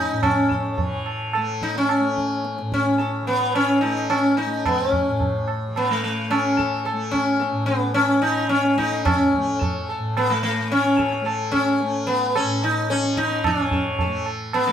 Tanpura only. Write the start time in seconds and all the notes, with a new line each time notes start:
Already playing: A2 E3 A3
0.12 A2
0.76 E3
1.37 A3
1.99 A3
2.61 A2
3.23 E3
3.84 A3
4.46 A3
5.08 A2
5.68 E3
6.30 A3
6.92 A3
7.52 A2
8.14 E3
8.75 A3
9.36 A3
9.98 A2
10.60 E3
11.21 A3
11.82 A3
12.43 A2
13.03 E3
13.45 E3
14.06 A3
14.67 A3